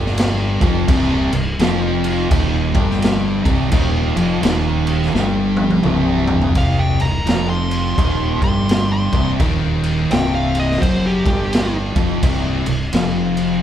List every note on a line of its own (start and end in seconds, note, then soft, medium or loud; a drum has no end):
0.00 0.57 G1 loud
0.00 0.61 G2 medium
0.00 0.61 G3 loud
0.06 snare soft
0.17 snare loud
0.17 crash loud
0.61 0.87 F1 loud
0.61 0.89 F2 medium
0.61 0.89 F3 loud
0.61 kick loud
0.61 crash medium
0.88 1.29 C1 loud
0.88 1.32 C2 loud
0.88 1.32 C3 loud
0.88 kick loud
0.88 crash medium
1.32 1.58 C1 medium
1.32 1.54 C2 medium
1.32 crash medium
1.59 2.27 F1 loud
1.59 2.29 F2 loud
1.59 2.30 F3 loud
1.59 snare loud
1.59 crash medium
2.04 crash medium
2.31 2.72 D#1 loud
2.31 2.73 D#2 medium
2.31 2.74 D#3 loud
2.31 kick loud
2.31 crash medium
2.75 3.42 G1 loud
2.75 3.44 G2 medium
2.75 3.45 G3 loud
2.75 kick loud
2.75 crash medium
2.91 snare soft
3.02 snare loud
3.02 crash medium
3.45 3.71 C1 medium
3.45 3.72 C2 medium
3.45 3.73 C3 loud
3.45 kick loud
3.45 crash medium
3.71 4.13 D#1 loud
3.71 4.15 D#2 loud
3.71 4.16 D#3 loud
3.71 kick loud
3.71 crash medium
4.16 4.41 F1 loud
4.16 4.42 F2 loud
4.16 4.43 F3 loud
4.16 crash medium
4.42 5.10 D#1 loud
4.42 5.13 D#2 loud
4.42 5.14 D#3 loud
4.42 snare loud
4.42 crash medium
4.87 crash medium
5.03 snare soft
5.14 5.81 G1 medium
5.14 5.84 G2 medium
5.14 5.85 G3 loud
5.14 snare medium
5.57 high tom medium
5.70 high tom medium
5.84 6.52 C1 loud
5.84 6.54 C2 loud
5.84 6.54 C3 loud
5.84 mid tom loud
6.28 floor tom loud
6.42 floor tom medium
6.55 6.97 C1 loud
6.55 6.97 C2 loud
6.55 6.98 C3 loud
6.55 6.80 F5 medium
6.55 kick loud
6.55 crash medium
6.79 7.02 G5 medium
6.98 7.26 C1 medium
6.98 7.21 C2 medium
6.98 7.49 A#5 medium
6.98 crash medium
7.25 7.94 F1 loud
7.25 7.96 F2 loud
7.25 7.97 F3 loud
7.25 snare loud
7.25 crash medium
7.50 8.42 C6 medium
7.71 crash medium
7.97 8.39 D#1 medium
7.97 8.40 D#2 loud
7.97 8.40 D#3 loud
7.97 kick loud
7.97 crash medium
8.41 9.09 G1 loud
8.41 9.11 G2 medium
8.41 9.12 G3 medium
8.41 8.91 C6 loud
8.41 kick loud
8.41 crash medium
8.69 snare loud
8.69 crash medium
8.93 9.30 C6 loud
9.13 9.38 C1 medium
9.13 9.40 C2 medium
9.13 9.40 C3 loud
9.13 kick loud
9.13 crash medium
9.39 10.07 D#1 medium
9.39 10.10 D#2 loud
9.39 10.10 D#3 loud
9.39 kick loud
9.39 crash medium
9.83 crash medium
10.10 10.77 C1 medium
10.10 10.82 C2 medium
10.10 10.82 C3 loud
10.10 10.34 G5 medium
10.10 snare loud
10.10 crash medium
10.35 10.57 F5 medium
10.55 crash medium
10.59 10.81 D#5 medium
10.71 snare soft
10.81 11.23 F#1 loud
10.81 11.24 F#2 medium
10.81 11.25 F#3 loud
10.81 11.04 C5 medium
10.81 kick loud
10.81 crash medium
11.06 11.74 G4 medium
11.26 11.92 G1 loud
11.26 11.96 G2 medium
11.26 11.96 G3 medium
11.26 kick loud
11.26 crash medium
11.53 snare loud
11.53 crash medium
11.96 12.21 F1 medium
11.96 12.23 F2 medium
11.96 12.23 F3 loud
11.96 kick medium
11.96 crash medium
12.22 12.63 C1 loud
12.22 12.65 C2 loud
12.22 12.66 C3 loud
12.22 kick loud
12.22 crash medium
12.66 12.92 C1 medium
12.66 12.89 C2 medium
12.66 crash medium
12.93 13.60 F1 loud
12.93 13.62 F2 loud
12.93 13.62 F3 loud
12.93 snare loud
12.93 crash medium
13.37 crash medium